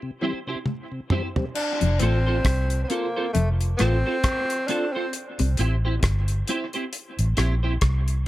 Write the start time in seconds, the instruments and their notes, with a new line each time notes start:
0.02 tonewheel organ C3
0.21 tonewheel organ E3 G3 C4, clean electric guitar C4 E4 G4 C5
0.47 tonewheel organ C3, clean electric guitar C4 E4 G4 C5
0.66 high tom
0.92 tonewheel organ C3
1.10 tonewheel organ E3 G3 C4, clean electric guitar C4 E4 G4 C5, mid tom
1.36 tonewheel organ G3 C4, floor tom
1.55 tenor saxophone D4, crash
1.81 fingered electric bass F1, clean electric guitar F2, closed hi-hat
2.00 fingered electric bass A1, clean electric guitar A2 C4 F4 A4 C5, tenor saxophone C4, closed hi-hat
2.26 clean electric guitar C4 F4 A4 C5
2.45 fingered electric bass C2, clean electric guitar C3, kick, cross-stick, closed hi-hat
2.70 closed hi-hat
2.84 tenor saxophone C4
2.89 tenor saxophone A#3, clean electric guitar C4 F4 A4 C5, closed hi-hat
3.16 clean electric guitar C4 F4 A4 C5
3.33 fingered electric bass F1, clean electric guitar F2, tenor saxophone A3, closed hi-hat
3.61 closed hi-hat
3.77 fingered electric bass A1, clean electric guitar A2 C4 F4 A4 C5, tenor saxophone C4, cross-stick, closed hi-hat
4.06 clean electric guitar C4 F4 A4 C5
4.24 kick, cross-stick, closed hi-hat
4.50 closed hi-hat
4.67 clean electric guitar C4 F4 A4 C5, tenor saxophone D4, closed hi-hat
4.92 tenor saxophone C4, clean electric guitar F4 A4 C5
4.97 clean electric guitar C4
5.13 closed hi-hat
5.39 fingered electric bass C2, clean electric guitar C3, closed hi-hat
5.57 fingered electric bass A1, clean electric guitar C4 E4 G4 C5, closed hi-hat
5.85 clean electric guitar C4 E4 G4 C5
6.03 fingered electric bass G1, kick, cross-stick, closed hi-hat
6.28 closed hi-hat
6.48 clean electric guitar C4 E4 G4 C5, closed hi-hat
6.73 clean electric guitar C4 E4 G4 C5, closed hi-hat
6.93 closed hi-hat
7.19 fingered electric bass A1, closed hi-hat
7.37 fingered electric bass A#1, clean electric guitar C4 E4 G4 C5, cross-stick, closed hi-hat
7.63 clean electric guitar C4 E4 G4 C5
7.81 fingered electric bass C2, kick, cross-stick, closed hi-hat
8.08 closed hi-hat